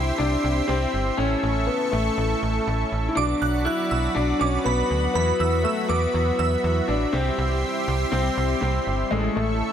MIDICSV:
0, 0, Header, 1, 6, 480
1, 0, Start_track
1, 0, Tempo, 495868
1, 1147, Time_signature, 4, 2, 24, 8
1, 9415, End_track
2, 0, Start_track
2, 0, Title_t, "Synth bell"
2, 0, Program_c, 0, 98
2, 3068, Note_on_c, 0, 86, 109
2, 3229, Note_off_c, 0, 86, 0
2, 3307, Note_on_c, 0, 90, 78
2, 3468, Note_off_c, 0, 90, 0
2, 3546, Note_on_c, 0, 90, 85
2, 3707, Note_off_c, 0, 90, 0
2, 3786, Note_on_c, 0, 88, 83
2, 3867, Note_off_c, 0, 88, 0
2, 4267, Note_on_c, 0, 86, 86
2, 4428, Note_off_c, 0, 86, 0
2, 4507, Note_on_c, 0, 83, 87
2, 4845, Note_off_c, 0, 83, 0
2, 4989, Note_on_c, 0, 83, 100
2, 5149, Note_off_c, 0, 83, 0
2, 5228, Note_on_c, 0, 88, 76
2, 5389, Note_off_c, 0, 88, 0
2, 5466, Note_on_c, 0, 88, 84
2, 5628, Note_off_c, 0, 88, 0
2, 5705, Note_on_c, 0, 86, 85
2, 5786, Note_off_c, 0, 86, 0
2, 6186, Note_on_c, 0, 88, 89
2, 6267, Note_off_c, 0, 88, 0
2, 9415, End_track
3, 0, Start_track
3, 0, Title_t, "Analog synth pad"
3, 0, Program_c, 1, 89
3, 0, Note_on_c, 1, 67, 84
3, 0, Note_on_c, 1, 76, 77
3, 0, Note_on_c, 1, 84, 89
3, 1128, Note_off_c, 1, 67, 0
3, 1128, Note_off_c, 1, 84, 0
3, 1147, Note_on_c, 1, 69, 83
3, 1147, Note_on_c, 1, 85, 91
3, 3029, Note_off_c, 1, 76, 0
3, 3048, Note_off_c, 1, 69, 0
3, 3048, Note_off_c, 1, 85, 0
3, 3064, Note_on_c, 1, 74, 74
3, 3064, Note_on_c, 1, 83, 92
3, 3065, Note_on_c, 1, 66, 82
3, 4966, Note_off_c, 1, 74, 0
3, 4988, Note_on_c, 1, 76, 73
3, 6867, Note_off_c, 1, 83, 0
3, 6868, Note_off_c, 1, 66, 0
3, 6903, Note_on_c, 1, 67, 86
3, 6904, Note_on_c, 1, 84, 94
3, 8789, Note_off_c, 1, 76, 0
3, 8806, Note_off_c, 1, 67, 0
3, 8806, Note_off_c, 1, 84, 0
3, 8830, Note_on_c, 1, 69, 84
3, 8830, Note_on_c, 1, 76, 73
3, 8830, Note_on_c, 1, 85, 90
3, 9415, Note_off_c, 1, 69, 0
3, 9415, Note_off_c, 1, 76, 0
3, 9415, Note_off_c, 1, 85, 0
3, 9415, End_track
4, 0, Start_track
4, 0, Title_t, "Analog polysynth"
4, 0, Program_c, 2, 90
4, 0, Note_on_c, 2, 60, 65
4, 0, Note_on_c, 2, 64, 64
4, 0, Note_on_c, 2, 67, 63
4, 0, Note_on_c, 2, 72, 76
4, 1108, Note_off_c, 2, 60, 0
4, 1108, Note_off_c, 2, 64, 0
4, 1109, Note_off_c, 2, 67, 0
4, 1109, Note_off_c, 2, 72, 0
4, 1147, Note_on_c, 2, 57, 66
4, 1147, Note_on_c, 2, 61, 62
4, 1147, Note_on_c, 2, 64, 63
4, 1147, Note_on_c, 2, 69, 74
4, 3029, Note_off_c, 2, 57, 0
4, 3029, Note_off_c, 2, 61, 0
4, 3029, Note_off_c, 2, 64, 0
4, 3029, Note_off_c, 2, 69, 0
4, 3066, Note_on_c, 2, 66, 74
4, 3067, Note_on_c, 2, 54, 69
4, 3067, Note_on_c, 2, 59, 63
4, 3067, Note_on_c, 2, 62, 64
4, 4948, Note_off_c, 2, 54, 0
4, 4948, Note_off_c, 2, 59, 0
4, 4948, Note_off_c, 2, 66, 0
4, 4949, Note_off_c, 2, 62, 0
4, 4988, Note_on_c, 2, 59, 62
4, 4988, Note_on_c, 2, 64, 63
4, 4989, Note_on_c, 2, 54, 68
4, 4989, Note_on_c, 2, 66, 77
4, 6869, Note_off_c, 2, 54, 0
4, 6869, Note_off_c, 2, 59, 0
4, 6869, Note_off_c, 2, 64, 0
4, 6870, Note_off_c, 2, 66, 0
4, 6906, Note_on_c, 2, 64, 63
4, 6906, Note_on_c, 2, 67, 78
4, 6907, Note_on_c, 2, 55, 67
4, 6907, Note_on_c, 2, 60, 63
4, 8788, Note_off_c, 2, 64, 0
4, 8788, Note_off_c, 2, 67, 0
4, 8789, Note_off_c, 2, 55, 0
4, 8789, Note_off_c, 2, 60, 0
4, 8828, Note_on_c, 2, 57, 68
4, 8828, Note_on_c, 2, 61, 61
4, 8828, Note_on_c, 2, 64, 60
4, 8828, Note_on_c, 2, 69, 74
4, 9415, Note_off_c, 2, 57, 0
4, 9415, Note_off_c, 2, 61, 0
4, 9415, Note_off_c, 2, 64, 0
4, 9415, Note_off_c, 2, 69, 0
4, 9415, End_track
5, 0, Start_track
5, 0, Title_t, "Grand piano"
5, 0, Program_c, 3, 0
5, 0, Note_on_c, 3, 64, 107
5, 175, Note_on_c, 3, 62, 111
5, 195, Note_off_c, 3, 64, 0
5, 654, Note_on_c, 3, 60, 100
5, 676, Note_off_c, 3, 62, 0
5, 1107, Note_off_c, 3, 60, 0
5, 1135, Note_on_c, 3, 61, 102
5, 1614, Note_on_c, 3, 59, 92
5, 1636, Note_off_c, 3, 61, 0
5, 1854, Note_on_c, 3, 57, 96
5, 1868, Note_off_c, 3, 59, 0
5, 2782, Note_off_c, 3, 57, 0
5, 2984, Note_on_c, 3, 64, 82
5, 3051, Note_on_c, 3, 62, 110
5, 3059, Note_off_c, 3, 64, 0
5, 3532, Note_on_c, 3, 64, 113
5, 3554, Note_off_c, 3, 62, 0
5, 3985, Note_off_c, 3, 64, 0
5, 4014, Note_on_c, 3, 62, 107
5, 4253, Note_on_c, 3, 61, 98
5, 4268, Note_off_c, 3, 62, 0
5, 4494, Note_on_c, 3, 59, 97
5, 4507, Note_off_c, 3, 61, 0
5, 4960, Note_off_c, 3, 59, 0
5, 4974, Note_on_c, 3, 59, 102
5, 5455, Note_on_c, 3, 57, 95
5, 5475, Note_off_c, 3, 59, 0
5, 5698, Note_on_c, 3, 59, 101
5, 5708, Note_off_c, 3, 57, 0
5, 6658, Note_on_c, 3, 62, 96
5, 6691, Note_off_c, 3, 59, 0
5, 6898, Note_on_c, 3, 60, 102
5, 6910, Note_off_c, 3, 62, 0
5, 7841, Note_off_c, 3, 60, 0
5, 7856, Note_on_c, 3, 60, 98
5, 8321, Note_off_c, 3, 60, 0
5, 8335, Note_on_c, 3, 60, 90
5, 8816, Note_on_c, 3, 56, 94
5, 8836, Note_off_c, 3, 60, 0
5, 9057, Note_on_c, 3, 57, 83
5, 9069, Note_off_c, 3, 56, 0
5, 9415, Note_off_c, 3, 57, 0
5, 9415, End_track
6, 0, Start_track
6, 0, Title_t, "FM bass"
6, 0, Program_c, 4, 39
6, 0, Note_on_c, 4, 36, 104
6, 115, Note_off_c, 4, 36, 0
6, 188, Note_on_c, 4, 36, 114
6, 356, Note_off_c, 4, 36, 0
6, 427, Note_on_c, 4, 36, 105
6, 595, Note_off_c, 4, 36, 0
6, 668, Note_on_c, 4, 36, 106
6, 835, Note_off_c, 4, 36, 0
6, 907, Note_on_c, 4, 31, 91
6, 1075, Note_off_c, 4, 31, 0
6, 1146, Note_on_c, 4, 33, 106
6, 1314, Note_off_c, 4, 33, 0
6, 1386, Note_on_c, 4, 33, 107
6, 1638, Note_off_c, 4, 33, 0
6, 1866, Note_on_c, 4, 33, 109
6, 2034, Note_off_c, 4, 33, 0
6, 2106, Note_on_c, 4, 33, 106
6, 2274, Note_off_c, 4, 33, 0
6, 2348, Note_on_c, 4, 33, 97
6, 2516, Note_off_c, 4, 33, 0
6, 2587, Note_on_c, 4, 33, 106
6, 2755, Note_off_c, 4, 33, 0
6, 2827, Note_on_c, 4, 33, 93
6, 2995, Note_off_c, 4, 33, 0
6, 3068, Note_on_c, 4, 35, 107
6, 3236, Note_off_c, 4, 35, 0
6, 3308, Note_on_c, 4, 35, 102
6, 3559, Note_off_c, 4, 35, 0
6, 3789, Note_on_c, 4, 35, 97
6, 3956, Note_off_c, 4, 35, 0
6, 4028, Note_on_c, 4, 35, 110
6, 4196, Note_off_c, 4, 35, 0
6, 4268, Note_on_c, 4, 35, 100
6, 4435, Note_off_c, 4, 35, 0
6, 4507, Note_on_c, 4, 35, 112
6, 4675, Note_off_c, 4, 35, 0
6, 4748, Note_on_c, 4, 38, 96
6, 4916, Note_off_c, 4, 38, 0
6, 4986, Note_on_c, 4, 40, 113
6, 5155, Note_off_c, 4, 40, 0
6, 5225, Note_on_c, 4, 40, 107
6, 5478, Note_off_c, 4, 40, 0
6, 5705, Note_on_c, 4, 40, 105
6, 5873, Note_off_c, 4, 40, 0
6, 5945, Note_on_c, 4, 40, 107
6, 6114, Note_off_c, 4, 40, 0
6, 6184, Note_on_c, 4, 40, 108
6, 6353, Note_off_c, 4, 40, 0
6, 6426, Note_on_c, 4, 40, 106
6, 6594, Note_off_c, 4, 40, 0
6, 6665, Note_on_c, 4, 33, 89
6, 6834, Note_off_c, 4, 33, 0
6, 6906, Note_on_c, 4, 36, 117
6, 7074, Note_off_c, 4, 36, 0
6, 7145, Note_on_c, 4, 36, 105
6, 7398, Note_off_c, 4, 36, 0
6, 7625, Note_on_c, 4, 36, 106
6, 7794, Note_off_c, 4, 36, 0
6, 7864, Note_on_c, 4, 36, 112
6, 8033, Note_off_c, 4, 36, 0
6, 8105, Note_on_c, 4, 36, 105
6, 8273, Note_off_c, 4, 36, 0
6, 8345, Note_on_c, 4, 36, 101
6, 8514, Note_off_c, 4, 36, 0
6, 8585, Note_on_c, 4, 31, 92
6, 8754, Note_off_c, 4, 31, 0
6, 8825, Note_on_c, 4, 33, 103
6, 8994, Note_off_c, 4, 33, 0
6, 9065, Note_on_c, 4, 33, 109
6, 9318, Note_off_c, 4, 33, 0
6, 9415, End_track
0, 0, End_of_file